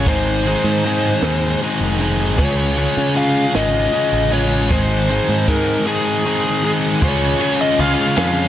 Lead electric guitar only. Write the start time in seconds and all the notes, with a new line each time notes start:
0.08 C5
2.39 C#5
3.17 F5
3.56 D#5
4.33 C#5
4.72 C5
5.48 A#4
5.87 G#4
7.04 C#5
7.61 D#5
7.80 F5
8.17 F5